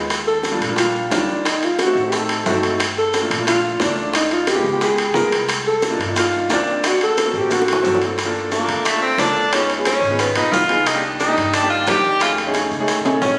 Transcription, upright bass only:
0.00 0.55 D#2 medium
0.60 1.08 A#1 medium
1.11 1.90 D2 medium
1.95 2.42 A1 medium
2.46 3.24 G1 medium
3.30 3.77 A#1 medium
3.80 4.59 C#2 medium
4.64 5.11 C#2 medium
5.15 5.94 C2 medium
5.99 6.46 G2 medium
6.50 7.28 D2 medium
7.34 7.81 A1 medium
7.84 8.62 G1 medium
8.68 9.15 D2 medium
9.18 9.97 C#2 medium
10.02 10.34 G#1 medium
10.36 10.52 A#1 medium
10.52 11.31 C2 medium
11.37 11.84 G2 medium
11.87 12.66 F2 medium
12.71 13.03 C#2 medium
13.04 13.21 B1 medium
13.22 13.39 A#1 medium

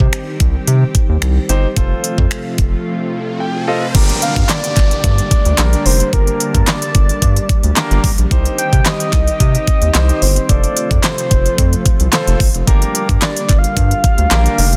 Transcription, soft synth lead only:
4.22 4.51 F5 loud
4.49 5.03 D5 loud
5.04 5.87 D5 loud
5.86 6.15 C5 medium
6.13 6.69 A#4 medium
6.68 7.77 D5 medium
8.58 8.87 G5 loud
8.86 9.40 D#5 loud
9.40 10.24 D#5 loud
10.22 10.51 C5 medium
10.49 11.03 D5 loud
11.04 12.09 C5 medium
13.22 13.60 D5 medium
13.58 14.77 F5 loud

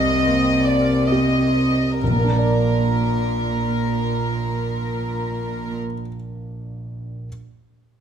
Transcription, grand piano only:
0.00 1.97 C2 soft
0.27 1.65 A#3 soft
1.12 1.98 C4 soft
1.12 1.98 G4 soft
2.04 5.79 A#1 soft
2.11 5.86 A#2 soft
2.18 5.93 A#3 soft
2.24 6.00 D4 soft
2.32 6.07 A#4 soft
2.39 6.14 D5 soft

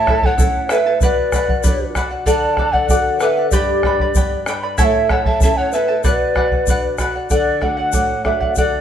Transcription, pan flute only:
0.00 0.27 E5 medium
0.25 0.71 C#5 medium
0.70 1.00 B4 medium
1.01 1.92 B4 medium
2.26 2.72 D5 medium
2.72 3.21 D5 medium
3.19 3.50 B4 medium
3.51 4.42 G4 medium
4.78 5.12 A4 medium
5.10 5.25 C#5 medium
5.25 5.40 E5 medium
5.43 5.59 E5 medium
5.57 5.75 C#5 medium
5.73 6.04 B4 medium
6.05 6.95 B4 medium

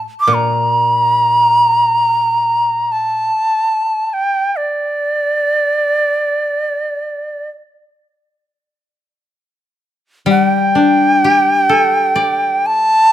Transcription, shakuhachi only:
0.20 0.35 D6 medium
0.34 2.93 A#5 medium
2.92 4.10 A5 medium
4.10 4.58 G5 medium
4.10 4.14 A5 medium
4.56 7.49 D5 medium
10.30 10.42 F#5 medium
10.42 12.68 G5 medium
12.66 13.12 A5 loud

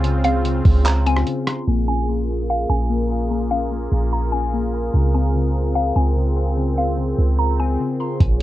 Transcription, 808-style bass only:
0.00 0.61 C#2 loud
0.65 1.24 C#2 loud
1.67 2.65 A#1 loud
2.69 3.88 A#1 loud
3.92 4.90 A#1 loud
4.94 5.92 C#2 loud
5.96 7.14 C#2 loud
7.18 7.77 C#2 loud
8.20 8.42 A#1 loud

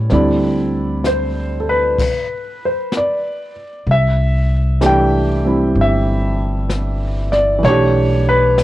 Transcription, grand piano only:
0.00 0.11 G3 soft
0.00 0.11 B3 soft
0.00 0.12 C#4 soft
0.00 0.11 E4 medium
0.00 0.12 C#5 medium
0.12 1.99 D3 soft
0.12 1.99 G3 soft
0.12 1.99 C4 soft
0.12 2.00 E4 medium
0.12 1.02 D5 medium
1.06 1.55 C5 medium
1.60 1.68 A4 soft
1.69 3.52 B4 medium
2.66 2.93 C5 medium
2.97 3.85 D5 medium
3.91 4.79 E5 medium
4.81 7.57 E3 soft
4.81 7.61 A3 soft
4.81 7.64 D4 soft
4.81 7.65 G4 medium
4.86 5.81 G5 medium
5.44 7.64 G3 soft
5.44 7.65 C4 soft
5.44 7.66 E4 soft
5.81 6.69 E5 medium
7.32 7.65 D5 medium
7.59 8.63 E3 soft
7.59 8.63 A3 soft
7.65 8.63 D4 soft
7.65 8.23 C#5 medium
7.69 8.63 G4 medium
8.29 8.63 B4 medium

